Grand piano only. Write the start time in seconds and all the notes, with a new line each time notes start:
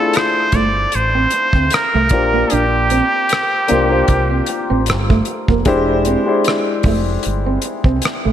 Already playing: A3 D4 E4 F4 G#4 C5
0.04 A4
2.11 A#3 D4 F4 G4 C5
3.68 A#3 D4 F4 G4 C5
3.89 A#3 D4 F4 G4 C5
5.66 G#3 D4 E4 G4 C5
6.26 G#3 D4 E4 G4 C5